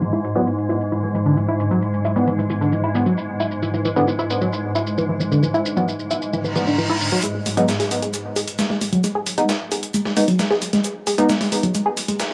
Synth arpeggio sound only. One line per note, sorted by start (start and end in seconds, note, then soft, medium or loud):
0.02 0.08 E3 medium
0.13 0.20 E4 loud
0.35 0.42 F#3 loud
0.69 0.76 E4 medium
0.92 0.99 E3 medium
1.03 1.10 E3 medium
1.15 1.19 E3 medium
1.26 1.36 D3 loud
1.37 1.44 E3 medium
1.48 1.55 E4 loud
1.71 1.78 F#3 loud
2.05 2.12 E4 medium
2.27 2.34 E3 medium
2.39 2.45 E3 medium
2.50 2.54 E3 medium
2.61 2.71 D3 loud
2.72 2.79 E3 medium
2.84 2.91 E4 loud
3.06 3.13 F#3 loud
3.40 3.47 E4 medium
3.63 3.69 E3 medium
3.74 3.81 E3 medium
3.85 3.89 E3 medium
3.96 4.07 D3 loud
4.08 4.15 E3 medium
4.19 4.26 E4 loud
4.41 4.48 F#3 loud
4.75 4.82 E4 medium
4.98 5.05 E3 medium
5.09 5.16 E3 medium
5.20 5.25 E3 medium
5.32 5.42 D3 loud
5.43 5.50 E3 medium
5.54 5.61 E4 medium
5.77 5.84 F#3 loud
6.11 6.17 E4 medium
6.33 6.40 E3 medium
6.44 6.51 E3 medium
6.56 6.60 E3 medium
6.67 6.77 D3 loud
6.78 6.85 E3 medium
6.90 6.96 E4 loud
7.12 7.19 F#3 loud
7.23 7.30 G#3 medium
7.35 7.42 G#3 medium
7.46 7.50 G#3 medium
7.57 7.68 F#3 loud
7.69 7.75 G#3 medium
7.80 7.87 G#4 loud
8.02 8.09 G#3 loud
8.36 8.43 G#4 medium
8.59 8.66 G#3 medium
8.70 8.77 G#3 medium
8.81 8.85 G#3 medium
8.93 9.03 F#3 loud
9.04 9.11 G#3 medium
9.15 9.22 G#4 loud
9.38 9.45 G#3 loud
9.72 9.78 G#4 medium
9.94 10.01 G#3 medium
10.05 10.12 G#3 medium
10.17 10.21 G#3 medium
10.28 10.38 F#3 loud
10.39 10.46 G#3 medium
10.51 10.57 G#4 loud
10.73 10.80 G#3 loud
11.07 11.14 G#4 medium
11.29 11.36 G#3 medium
11.41 11.48 G#3 medium
11.52 11.56 G#3 medium
11.63 11.74 F#3 loud
11.75 11.81 G#3 medium
11.86 11.93 G#4 loud
12.08 12.15 G#3 loud